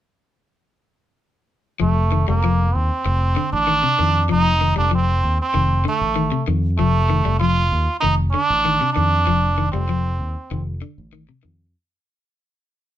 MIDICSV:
0, 0, Header, 1, 5, 480
1, 0, Start_track
1, 0, Tempo, 621762
1, 1400, Time_signature, 4, 2, 24, 8
1, 10014, End_track
2, 0, Start_track
2, 0, Title_t, "Trombone"
2, 0, Program_c, 0, 57
2, 1395, Note_on_c, 0, 57, 83
2, 1732, Note_off_c, 0, 57, 0
2, 1763, Note_on_c, 0, 58, 83
2, 2121, Note_on_c, 0, 60, 97
2, 2133, Note_off_c, 0, 58, 0
2, 2718, Note_off_c, 0, 60, 0
2, 2723, Note_on_c, 0, 62, 103
2, 3289, Note_off_c, 0, 62, 0
2, 3333, Note_on_c, 0, 63, 108
2, 3661, Note_off_c, 0, 63, 0
2, 3687, Note_on_c, 0, 62, 94
2, 3795, Note_off_c, 0, 62, 0
2, 3818, Note_on_c, 0, 60, 99
2, 4143, Note_off_c, 0, 60, 0
2, 4183, Note_on_c, 0, 60, 93
2, 4505, Note_off_c, 0, 60, 0
2, 4538, Note_on_c, 0, 57, 87
2, 4976, Note_off_c, 0, 57, 0
2, 5232, Note_on_c, 0, 57, 100
2, 5682, Note_off_c, 0, 57, 0
2, 5708, Note_on_c, 0, 65, 103
2, 6160, Note_off_c, 0, 65, 0
2, 6178, Note_on_c, 0, 63, 93
2, 6290, Note_off_c, 0, 63, 0
2, 6414, Note_on_c, 0, 62, 107
2, 6873, Note_off_c, 0, 62, 0
2, 6891, Note_on_c, 0, 62, 93
2, 7472, Note_off_c, 0, 62, 0
2, 7500, Note_on_c, 0, 60, 85
2, 8197, Note_off_c, 0, 60, 0
2, 10014, End_track
3, 0, Start_track
3, 0, Title_t, "Clean electric guitar"
3, 0, Program_c, 1, 27
3, 1387, Note_on_c, 1, 53, 85
3, 1561, Note_off_c, 1, 53, 0
3, 1635, Note_on_c, 1, 51, 68
3, 1722, Note_off_c, 1, 51, 0
3, 1760, Note_on_c, 1, 55, 68
3, 1845, Note_off_c, 1, 55, 0
3, 1883, Note_on_c, 1, 53, 74
3, 2051, Note_off_c, 1, 53, 0
3, 2597, Note_on_c, 1, 50, 76
3, 2768, Note_off_c, 1, 50, 0
3, 2835, Note_on_c, 1, 51, 71
3, 2921, Note_off_c, 1, 51, 0
3, 2957, Note_on_c, 1, 48, 69
3, 3042, Note_off_c, 1, 48, 0
3, 3078, Note_on_c, 1, 51, 74
3, 3248, Note_off_c, 1, 51, 0
3, 3313, Note_on_c, 1, 53, 89
3, 3485, Note_off_c, 1, 53, 0
3, 3560, Note_on_c, 1, 51, 70
3, 3644, Note_off_c, 1, 51, 0
3, 3674, Note_on_c, 1, 55, 72
3, 3760, Note_off_c, 1, 55, 0
3, 3792, Note_on_c, 1, 53, 69
3, 3964, Note_off_c, 1, 53, 0
3, 4276, Note_on_c, 1, 51, 85
3, 4446, Note_off_c, 1, 51, 0
3, 4517, Note_on_c, 1, 50, 77
3, 4686, Note_off_c, 1, 50, 0
3, 4753, Note_on_c, 1, 51, 80
3, 4839, Note_off_c, 1, 51, 0
3, 4877, Note_on_c, 1, 48, 69
3, 4961, Note_off_c, 1, 48, 0
3, 4999, Note_on_c, 1, 51, 73
3, 5167, Note_off_c, 1, 51, 0
3, 5241, Note_on_c, 1, 53, 84
3, 5409, Note_off_c, 1, 53, 0
3, 5478, Note_on_c, 1, 51, 77
3, 5562, Note_off_c, 1, 51, 0
3, 5598, Note_on_c, 1, 55, 71
3, 5681, Note_off_c, 1, 55, 0
3, 5720, Note_on_c, 1, 53, 74
3, 5888, Note_off_c, 1, 53, 0
3, 6195, Note_on_c, 1, 51, 84
3, 6364, Note_off_c, 1, 51, 0
3, 6438, Note_on_c, 1, 50, 76
3, 6607, Note_off_c, 1, 50, 0
3, 6679, Note_on_c, 1, 51, 77
3, 6762, Note_off_c, 1, 51, 0
3, 6801, Note_on_c, 1, 48, 63
3, 6883, Note_off_c, 1, 48, 0
3, 6915, Note_on_c, 1, 51, 72
3, 7084, Note_off_c, 1, 51, 0
3, 7156, Note_on_c, 1, 53, 79
3, 7325, Note_off_c, 1, 53, 0
3, 7394, Note_on_c, 1, 51, 70
3, 7479, Note_off_c, 1, 51, 0
3, 7514, Note_on_c, 1, 55, 68
3, 7599, Note_off_c, 1, 55, 0
3, 7636, Note_on_c, 1, 53, 77
3, 7805, Note_off_c, 1, 53, 0
3, 8116, Note_on_c, 1, 51, 82
3, 8285, Note_off_c, 1, 51, 0
3, 8350, Note_on_c, 1, 50, 69
3, 8522, Note_off_c, 1, 50, 0
3, 8590, Note_on_c, 1, 51, 71
3, 8677, Note_off_c, 1, 51, 0
3, 8713, Note_on_c, 1, 48, 62
3, 8799, Note_off_c, 1, 48, 0
3, 8823, Note_on_c, 1, 51, 72
3, 8997, Note_off_c, 1, 51, 0
3, 10014, End_track
4, 0, Start_track
4, 0, Title_t, "Fingered electric bass"
4, 0, Program_c, 2, 33
4, 1397, Note_on_c, 2, 29, 89
4, 1735, Note_off_c, 2, 29, 0
4, 1761, Note_on_c, 2, 29, 92
4, 2097, Note_off_c, 2, 29, 0
4, 2124, Note_on_c, 2, 39, 78
4, 2234, Note_off_c, 2, 39, 0
4, 2357, Note_on_c, 2, 29, 87
4, 2582, Note_off_c, 2, 29, 0
4, 2723, Note_on_c, 2, 33, 78
4, 2946, Note_off_c, 2, 33, 0
4, 3086, Note_on_c, 2, 41, 83
4, 3307, Note_off_c, 2, 41, 0
4, 3332, Note_on_c, 2, 29, 89
4, 3662, Note_off_c, 2, 29, 0
4, 3688, Note_on_c, 2, 29, 87
4, 4019, Note_off_c, 2, 29, 0
4, 4046, Note_on_c, 2, 39, 81
4, 4154, Note_off_c, 2, 39, 0
4, 4283, Note_on_c, 2, 29, 92
4, 4504, Note_off_c, 2, 29, 0
4, 4642, Note_on_c, 2, 33, 78
4, 4864, Note_off_c, 2, 33, 0
4, 5001, Note_on_c, 2, 41, 86
4, 5222, Note_off_c, 2, 41, 0
4, 5243, Note_on_c, 2, 29, 94
4, 5576, Note_off_c, 2, 29, 0
4, 5602, Note_on_c, 2, 29, 86
4, 5935, Note_off_c, 2, 29, 0
4, 5961, Note_on_c, 2, 39, 83
4, 6070, Note_off_c, 2, 39, 0
4, 6205, Note_on_c, 2, 29, 88
4, 6424, Note_off_c, 2, 29, 0
4, 6563, Note_on_c, 2, 33, 79
4, 6783, Note_off_c, 2, 33, 0
4, 6924, Note_on_c, 2, 41, 85
4, 7144, Note_off_c, 2, 41, 0
4, 7164, Note_on_c, 2, 29, 88
4, 7496, Note_off_c, 2, 29, 0
4, 7516, Note_on_c, 2, 29, 87
4, 7851, Note_off_c, 2, 29, 0
4, 7871, Note_on_c, 2, 39, 76
4, 7985, Note_off_c, 2, 39, 0
4, 8116, Note_on_c, 2, 29, 89
4, 8340, Note_off_c, 2, 29, 0
4, 8476, Note_on_c, 2, 33, 77
4, 8700, Note_off_c, 2, 33, 0
4, 8836, Note_on_c, 2, 41, 81
4, 9061, Note_off_c, 2, 41, 0
4, 10014, End_track
5, 0, Start_track
5, 0, Title_t, "Muted clean electric guitar strokes"
5, 2360, Note_on_c, 9, 29, 86
5, 2437, Note_off_c, 9, 29, 0
5, 10014, End_track
0, 0, End_of_file